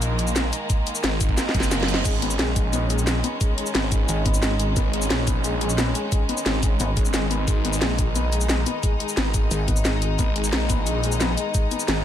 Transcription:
Already playing: detuned saw bass A#1, string section D#3 G#3 A#3
0.02 closed hi-hat, shaker
0.19 closed hi-hat, shaker
0.27 shaker
0.36 snare, closed hi-hat, shaker
0.53 closed hi-hat, shaker
0.70 kick, closed hi-hat, shaker
0.87 closed hi-hat, shaker
0.95 shaker
1.04 detuned saw bass G#1, snare, closed hi-hat, shaker
1.20 kick, closed hi-hat, shaker
1.29 kick
1.37 snare, closed hi-hat, reverse cymbal, shaker
1.49 snare
1.54 detuned saw bass F#1, kick, closed hi-hat, shaker
1.60 snare, shaker
1.71 snare, closed hi-hat, shaker
1.80 snare, zap
1.88 closed hi-hat, shaker
1.94 snare
2.05 detuned saw bass G#1, felt piano G#3, string section C#4, kick, closed hi-hat, crash, shaker
2.22 felt piano B3, closed hi-hat
2.31 shaker
2.39 detuned saw bass A#1, felt piano G#3, snare, closed hi-hat
2.56 felt piano G#3, kick, closed hi-hat, shaker
2.73 felt piano B3, closed hi-hat, shaker
2.90 felt piano G#3, closed hi-hat, shaker
2.99 shaker
3.07 felt piano G#3, snare, closed hi-hat, shaker
3.24 felt piano B3, closed hi-hat, shaker
3.41 felt piano G#3, kick, closed hi-hat, shaker
3.58 felt piano G#3, closed hi-hat
3.66 shaker
3.75 detuned saw bass G#1, felt piano B3, snare, closed hi-hat
3.92 felt piano G#3, kick, closed hi-hat, shaker
4.09 wobble bass G#1, felt piano G#3, closed hi-hat, shaker
4.26 felt piano B3, kick, closed hi-hat, shaker
4.34 shaker
4.43 felt piano G#3, snare, closed hi-hat, shaker
4.59 felt piano G#3, closed hi-hat, shaker
4.76 detuned saw bass G#1, felt piano B3, kick, closed hi-hat, shaker
4.93 felt piano G#3, closed hi-hat
5.02 shaker
5.10 detuned saw bass A#1, felt piano G#3, snare, closed hi-hat
5.27 felt piano B3, kick, closed hi-hat, shaker
5.44 felt piano G#3, closed hi-hat, shaker
5.61 felt piano G#3, closed hi-hat, shaker
5.70 shaker
5.78 felt piano B3, snare, closed hi-hat, shaker
5.95 felt piano G#3, closed hi-hat, shaker
6.12 felt piano G#3, kick, closed hi-hat, shaker
6.29 felt piano B3, closed hi-hat
6.37 shaker
6.46 detuned saw bass G#1, felt piano G#3, snare, closed hi-hat
6.63 felt piano G#3, kick, closed hi-hat, shaker
6.80 wobble bass G#1, felt piano B3, closed hi-hat, shaker
6.97 detuned saw bass G#1, felt piano G#3, kick, closed hi-hat, shaker
7.05 shaker
7.14 felt piano G#3, snare, closed hi-hat, shaker
7.31 felt piano B3, closed hi-hat, shaker
7.48 detuned saw bass G#1, felt piano G#3, string section D#4, kick, closed hi-hat, shaker
7.65 felt piano B3, closed hi-hat
7.73 shaker
7.82 detuned saw bass A#1, felt piano G#3, snare, closed hi-hat
7.98 felt piano G#3, kick, closed hi-hat, shaker
8.15 felt piano B3, closed hi-hat, shaker
8.32 felt piano G#3, closed hi-hat, shaker
8.41 shaker
8.49 felt piano G#3, snare, closed hi-hat, shaker
8.66 felt piano B3, closed hi-hat, shaker
8.83 felt piano G#3, kick, closed hi-hat, shaker
9.00 felt piano G#3, closed hi-hat
9.09 shaker
9.17 detuned saw bass G#1, felt piano B3, snare, closed hi-hat
9.34 felt piano G#3, kick, closed hi-hat, shaker
9.51 wobble bass G#1, felt piano G#3, closed hi-hat, shaker
9.68 felt piano B3, kick, closed hi-hat, shaker
9.77 shaker
9.85 felt piano G#3, snare, closed hi-hat, shaker
10.02 felt piano G#3, closed hi-hat, shaker
10.19 detuned saw bass G#1, felt piano B3, kick, closed hi-hat, shaker
10.36 felt piano G#3, closed hi-hat
10.44 shaker
10.53 detuned saw bass A#1, felt piano G#3, snare, closed hi-hat
10.70 felt piano B3, kick, closed hi-hat, shaker
10.87 felt piano G#3, closed hi-hat, shaker
11.04 felt piano G#3, closed hi-hat, shaker
11.12 shaker
11.21 felt piano B3, snare, closed hi-hat, shaker
11.37 felt piano G#3, closed hi-hat, shaker
11.54 felt piano G#3, kick, closed hi-hat, shaker
11.71 felt piano B3, closed hi-hat, shaker
11.80 shaker
11.88 detuned saw bass G#1, felt piano G#3, snare, closed hi-hat, shaker

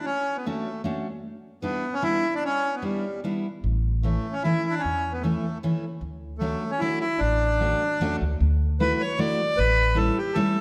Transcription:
0.05 accordion C#4
0.37 accordion B3
0.45 accordion A3, steel-string acoustic guitar A3 C#4 D4 F#4
0.84 steel-string acoustic guitar A3 C#4 D4 F#4
1.62 steel-string acoustic guitar G3 B3 D4 E4, accordion B3
1.94 accordion C#4
2.02 steel-string acoustic guitar G3 B3 D4 E4, accordion E4
2.35 accordion D4
2.45 accordion C#4
2.75 accordion B3
2.82 steel-string acoustic guitar G3 B3 D4 E4, accordion G3
3.24 steel-string acoustic guitar G3 B3 D4 E4
3.64 upright bass A1
4.03 steel-string acoustic guitar E3 A3 C#4 E4, accordion A3
4.32 accordion C#4
4.43 steel-string acoustic guitar E3 A3 C#4 E4, accordion E4
4.70 accordion D4
4.79 accordion C#4
4.84 upright bass E2
5.12 accordion B3
5.21 steel-string acoustic guitar E3 C#4 E4, accordion A3
5.25 steel-string acoustic guitar A3
5.63 steel-string acoustic guitar E3 A3 C#4 E4
6.01 upright bass D2
6.39 steel-string acoustic guitar F#3 A3 C#4 D4, accordion A3
6.71 accordion C#4
6.79 steel-string acoustic guitar F#3 A3 C#4 D4, accordion E4
7.00 accordion E4
7.19 upright bass A1, accordion D4
7.60 steel-string acoustic guitar F#3 A3 C#4 D4
8.00 upright bass E2, steel-string acoustic guitar F#3 A3 C#4 D4
8.21 upright bass D2
8.40 upright bass D2
8.80 steel-string acoustic guitar F#3 A3 D4 E4, accordion B4
9.00 accordion C#5
9.18 steel-string acoustic guitar F#3 A3 D4 E4, accordion D5
9.57 upright bass A1, accordion B4
9.95 steel-string acoustic guitar G3 A3 C#4 E4, accordion A4
10.18 accordion G4
10.34 steel-string acoustic guitar G3 A3 C#4 E4, accordion A4

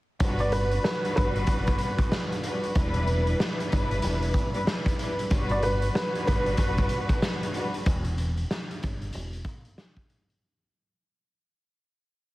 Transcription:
0.20 fingered electric bass G1, string section G3 D4 F#4 B4, kick, closed hi-hat
0.39 upright piano D5, closed hi-hat
0.52 upright piano B4, closed hi-hat
0.71 closed hi-hat
0.83 string section G3 D4 F#4 B4, upright piano B4, snare
1.05 closed hi-hat
1.16 fingered electric bass G1, upright piano B4, kick, closed hi-hat
1.36 closed hi-hat
1.47 fingered electric bass F#1, kick, closed hi-hat
1.67 kick, closed hi-hat
1.78 closed hi-hat
1.99 kick, closed hi-hat
2.12 snare
2.32 closed hi-hat
2.43 string section G3 D4 F#4 B4, closed hi-hat
2.63 closed hi-hat
2.75 fingered electric bass E1, string section G3 D4 E4 B4, kick, closed hi-hat
2.94 closed hi-hat
3.07 closed hi-hat
3.27 closed hi-hat
3.40 snare
3.60 closed hi-hat
3.69 string section G3 D4 E4 B4, kick, closed hi-hat
3.73 fingered electric bass G1
3.91 closed hi-hat
4.02 fingered electric bass E1, snare, closed hi-hat
4.22 closed hi-hat
4.34 kick, closed hi-hat
4.52 string section G3 D4 E4 B4, closed hi-hat
4.66 string section G3 D4 E4 B4, snare
4.86 kick, closed hi-hat
4.97 string section G3 D4 E4 B4, closed hi-hat
5.19 closed hi-hat
5.31 fingered electric bass G1, string section G3 D4 F#4 B4, kick, closed hi-hat
5.49 upright piano D5, closed hi-hat
5.62 upright piano B4, closed hi-hat
5.82 closed hi-hat
5.93 string section G3 D4 F#4 B4, upright piano B4, snare
6.15 closed hi-hat
6.27 fingered electric bass G1, upright piano B4, kick, closed hi-hat
6.46 closed hi-hat
6.57 fingered electric bass F#1, kick, closed hi-hat
6.77 kick, closed hi-hat
6.89 closed hi-hat
7.09 kick, closed hi-hat
7.22 snare
7.43 closed hi-hat
7.54 string section G3 D4 F#4 B4, closed hi-hat
7.74 closed hi-hat
7.86 fingered electric bass E1, kick, closed hi-hat
8.04 closed hi-hat
8.18 closed hi-hat
8.37 closed hi-hat
8.51 snare
8.71 closed hi-hat
8.83 fingered electric bass G1, kick, closed hi-hat
9.01 closed hi-hat
9.13 fingered electric bass E1, closed hi-hat
9.33 closed hi-hat
9.44 kick, closed hi-hat
9.65 closed hi-hat
9.78 snare
9.97 kick, closed hi-hat
10.10 closed hi-hat
10.30 closed hi-hat

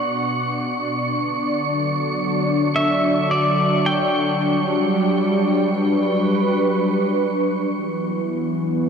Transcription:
Already playing: analog synth pad B2 B3 D4 D5, pedal steel guitar F#5, synth texture C#6
1.14 analog synth pad D3
1.64 analog synth pad F#3
2.76 pedal steel guitar E5
3.31 pedal steel guitar D5
3.86 pedal steel guitar G5
4.41 analog synth pad G3
5.66 analog synth pad B4
7.73 analog synth pad E3
7.95 analog synth pad B3
8.76 analog synth pad D#4

